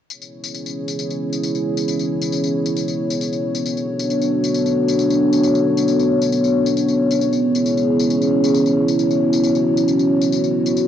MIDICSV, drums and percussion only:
0, 0, Header, 1, 2, 480
1, 0, Start_track
1, 0, Tempo, 444444
1, 111, Time_signature, 4, 2, 24, 8
1, 11746, End_track
2, 0, Start_track
2, 0, Title_t, "Drums"
2, 108, Note_on_c, 9, 54, 49
2, 216, Note_off_c, 9, 54, 0
2, 233, Note_on_c, 9, 54, 30
2, 341, Note_off_c, 9, 54, 0
2, 472, Note_on_c, 9, 54, 61
2, 580, Note_off_c, 9, 54, 0
2, 588, Note_on_c, 9, 54, 46
2, 696, Note_off_c, 9, 54, 0
2, 714, Note_on_c, 9, 54, 29
2, 822, Note_off_c, 9, 54, 0
2, 951, Note_on_c, 9, 54, 59
2, 1059, Note_off_c, 9, 54, 0
2, 1068, Note_on_c, 9, 54, 51
2, 1176, Note_off_c, 9, 54, 0
2, 1193, Note_on_c, 9, 54, 29
2, 1301, Note_off_c, 9, 54, 0
2, 1433, Note_on_c, 9, 54, 60
2, 1541, Note_off_c, 9, 54, 0
2, 1549, Note_on_c, 9, 54, 51
2, 1657, Note_off_c, 9, 54, 0
2, 1672, Note_on_c, 9, 54, 29
2, 1780, Note_off_c, 9, 54, 0
2, 1913, Note_on_c, 9, 54, 61
2, 2021, Note_off_c, 9, 54, 0
2, 2030, Note_on_c, 9, 54, 51
2, 2138, Note_off_c, 9, 54, 0
2, 2153, Note_on_c, 9, 54, 29
2, 2261, Note_off_c, 9, 54, 0
2, 2392, Note_on_c, 9, 54, 60
2, 2500, Note_off_c, 9, 54, 0
2, 2509, Note_on_c, 9, 54, 47
2, 2617, Note_off_c, 9, 54, 0
2, 2632, Note_on_c, 9, 54, 30
2, 2740, Note_off_c, 9, 54, 0
2, 2870, Note_on_c, 9, 54, 60
2, 2978, Note_off_c, 9, 54, 0
2, 2988, Note_on_c, 9, 54, 50
2, 3096, Note_off_c, 9, 54, 0
2, 3111, Note_on_c, 9, 54, 31
2, 3219, Note_off_c, 9, 54, 0
2, 3352, Note_on_c, 9, 54, 60
2, 3460, Note_off_c, 9, 54, 0
2, 3468, Note_on_c, 9, 54, 52
2, 3576, Note_off_c, 9, 54, 0
2, 3593, Note_on_c, 9, 54, 30
2, 3701, Note_off_c, 9, 54, 0
2, 3831, Note_on_c, 9, 54, 62
2, 3939, Note_off_c, 9, 54, 0
2, 3948, Note_on_c, 9, 54, 49
2, 4056, Note_off_c, 9, 54, 0
2, 4072, Note_on_c, 9, 54, 29
2, 4180, Note_off_c, 9, 54, 0
2, 4313, Note_on_c, 9, 54, 61
2, 4421, Note_off_c, 9, 54, 0
2, 4430, Note_on_c, 9, 54, 46
2, 4538, Note_off_c, 9, 54, 0
2, 4552, Note_on_c, 9, 54, 30
2, 4660, Note_off_c, 9, 54, 0
2, 4793, Note_on_c, 9, 54, 57
2, 4901, Note_off_c, 9, 54, 0
2, 4908, Note_on_c, 9, 54, 52
2, 5016, Note_off_c, 9, 54, 0
2, 5033, Note_on_c, 9, 54, 29
2, 5141, Note_off_c, 9, 54, 0
2, 5274, Note_on_c, 9, 54, 59
2, 5382, Note_off_c, 9, 54, 0
2, 5389, Note_on_c, 9, 54, 50
2, 5497, Note_off_c, 9, 54, 0
2, 5512, Note_on_c, 9, 54, 29
2, 5620, Note_off_c, 9, 54, 0
2, 5753, Note_on_c, 9, 54, 57
2, 5861, Note_off_c, 9, 54, 0
2, 5868, Note_on_c, 9, 54, 48
2, 5976, Note_off_c, 9, 54, 0
2, 5994, Note_on_c, 9, 54, 27
2, 6102, Note_off_c, 9, 54, 0
2, 6233, Note_on_c, 9, 54, 58
2, 6341, Note_off_c, 9, 54, 0
2, 6349, Note_on_c, 9, 54, 45
2, 6457, Note_off_c, 9, 54, 0
2, 6474, Note_on_c, 9, 54, 28
2, 6582, Note_off_c, 9, 54, 0
2, 6714, Note_on_c, 9, 54, 57
2, 6822, Note_off_c, 9, 54, 0
2, 6830, Note_on_c, 9, 54, 49
2, 6938, Note_off_c, 9, 54, 0
2, 6955, Note_on_c, 9, 54, 28
2, 7063, Note_off_c, 9, 54, 0
2, 7194, Note_on_c, 9, 54, 56
2, 7302, Note_off_c, 9, 54, 0
2, 7311, Note_on_c, 9, 54, 50
2, 7419, Note_off_c, 9, 54, 0
2, 7436, Note_on_c, 9, 54, 28
2, 7544, Note_off_c, 9, 54, 0
2, 7675, Note_on_c, 9, 54, 55
2, 7783, Note_off_c, 9, 54, 0
2, 7790, Note_on_c, 9, 54, 46
2, 7898, Note_off_c, 9, 54, 0
2, 7913, Note_on_c, 9, 54, 27
2, 8021, Note_off_c, 9, 54, 0
2, 8152, Note_on_c, 9, 54, 57
2, 8260, Note_off_c, 9, 54, 0
2, 8270, Note_on_c, 9, 54, 44
2, 8378, Note_off_c, 9, 54, 0
2, 8395, Note_on_c, 9, 54, 27
2, 8503, Note_off_c, 9, 54, 0
2, 8634, Note_on_c, 9, 54, 54
2, 8742, Note_off_c, 9, 54, 0
2, 8751, Note_on_c, 9, 54, 48
2, 8859, Note_off_c, 9, 54, 0
2, 8874, Note_on_c, 9, 54, 27
2, 8982, Note_off_c, 9, 54, 0
2, 9113, Note_on_c, 9, 54, 54
2, 9221, Note_off_c, 9, 54, 0
2, 9229, Note_on_c, 9, 54, 46
2, 9337, Note_off_c, 9, 54, 0
2, 9352, Note_on_c, 9, 54, 27
2, 9460, Note_off_c, 9, 54, 0
2, 9593, Note_on_c, 9, 54, 56
2, 9701, Note_off_c, 9, 54, 0
2, 9710, Note_on_c, 9, 54, 46
2, 9818, Note_off_c, 9, 54, 0
2, 9834, Note_on_c, 9, 54, 27
2, 9942, Note_off_c, 9, 54, 0
2, 10075, Note_on_c, 9, 54, 57
2, 10183, Note_off_c, 9, 54, 0
2, 10189, Note_on_c, 9, 54, 44
2, 10297, Note_off_c, 9, 54, 0
2, 10314, Note_on_c, 9, 54, 28
2, 10422, Note_off_c, 9, 54, 0
2, 10553, Note_on_c, 9, 54, 55
2, 10661, Note_off_c, 9, 54, 0
2, 10669, Note_on_c, 9, 54, 46
2, 10777, Note_off_c, 9, 54, 0
2, 10794, Note_on_c, 9, 54, 28
2, 10902, Note_off_c, 9, 54, 0
2, 11033, Note_on_c, 9, 54, 57
2, 11141, Note_off_c, 9, 54, 0
2, 11149, Note_on_c, 9, 54, 45
2, 11257, Note_off_c, 9, 54, 0
2, 11273, Note_on_c, 9, 54, 28
2, 11381, Note_off_c, 9, 54, 0
2, 11512, Note_on_c, 9, 54, 57
2, 11620, Note_off_c, 9, 54, 0
2, 11628, Note_on_c, 9, 54, 48
2, 11736, Note_off_c, 9, 54, 0
2, 11746, End_track
0, 0, End_of_file